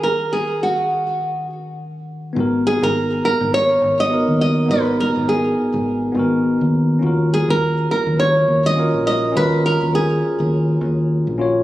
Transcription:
X:1
M:4/4
L:1/16
Q:"Swing 16ths" 1/4=103
K:G#dor
V:1 name="Nylon-string guitar"
A2 G2 F6 z6 | z2 G A3 A2 c3 d3 d2 | B2 A2 G8- G2 z2 | z2 G A3 A2 c3 d3 d2 |
B2 A2 G8- G2 z2 |]
V:2 name="Tine electric piano"
[D,CFAe]16 | [B,DFA]12 [B,DFA]2 z2 | [B,DFA]8- [B,DFA]2 [B,DFA]6 | [CEFA]12 [CEFA]2 z2 |
[CEFA]8- [CEFA]2 z4 [CEFc]2 |]
V:3 name="Fingered electric bass" clef=bass
z16 | G,,,3 G,,,3 z G,,,3 G,,,3 D,,3 | G,,,3 G,,,3 z G,,,3 G,,,3 D,,3 | D,,3 D,,3 z D,,3 D,,3 A,,,3 |
D,,3 D,,3 z D,,3 D,,3 A,,,3 |]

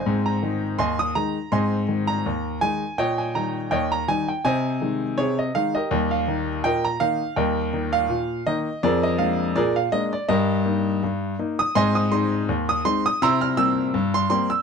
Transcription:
X:1
M:2/4
L:1/16
Q:"Swing 16ths" 1/4=82
K:Ab
V:1 name="Grand piano"
[cea] b3 [eac'] e' b2 | [eac']3 b3 a2 | [deg] a b2 [deg] b a g | [cea]4 [Ad] e f [GBe]- |
[GBe] f3 [Beg] b f2 | [Beg]3 f3 e2 | [AB=d] e f2 [ABd] f e d | [GBe]4 z3 e' |
[eac'] e' c'3 e' c' e' | [bc'=e'] f' e'3 c' c' e' |]
V:2 name="Grand piano" clef=bass
[A,,C]2 [E,A,E]2 E,,2 [E,A,E]2 | [A,,C]2 [E,A,E]2 E,,2 [E,A,E]2 | B,,2 [E,G,E]2 E,,2 [E,G,E]2 | C,2 [E,A,E]2 C,2 [E,A,E]2 |
[E,,G,]2 [E,B,E]2 B,,2 [E,B,E]2 | [E,,G,]2 [E,B,E]2 B,,2 [E,B,E]2 | F,,2 [A,B,=D]2 B,,2 [A,B,D]2 | G,,2 [B,E]2 G,,2 [B,E]2 |
[A,,C]2 [A,CE]2 E,,2 [A,CE]2 | [C,=E]2 [G,B,C]2 G,,2 [G,B,C]2 |]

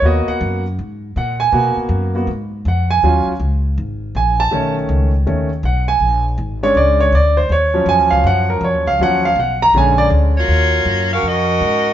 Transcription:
X:1
M:4/4
L:1/8
Q:"Swing" 1/4=161
K:Ebm
V:1 name="Grand piano"
e g2 z3 g a- | a z4 z g a- | a z4 z a =a- | =a z4 z ^f _a- |
a z2 ^c =d c d =c | d2 a f g B d f | g f g b a =d z2 | z8 |]
V:2 name="Grand piano"
[B,CG]3 z4 z | [B,CG]3 [B,CG] z4 | [G,DF] z6 z | [^D,=A,_D]3 z [^D,A,_D] z3 |
z3 [A,^C=D]3 z2 | z [F,G,D]6- [F,G,D] | [F,G,D] z3 [=D,A,^C]3 z | z8 |]
V:3 name="Saxophone section"
z8 | z8 | z8 | z8 |
z8 | z8 | z6 z [B,FG^c]- | [B,FG^c]3 [DGBf] [DGBe]4 |]
V:4 name="Upright bass" clef=bass
E,, z G,,2 A,,2 B,,2 | C, z G,,2 A,,2 F,,2 | E,, z D,,2 A,,,2 B,,,2 | =B,,,2 D,,2 ^D,,2 B,,,2 |
B,,,2 A,,,2 ^C,,2 =D,,2 | E,,2 (3F,, E,, D,, G,,2 (3F,, E,, D,, | E,,2 C,,2 B,,,2 =D,,2 | E,,2 G,,2 F,,2 A,,2 |]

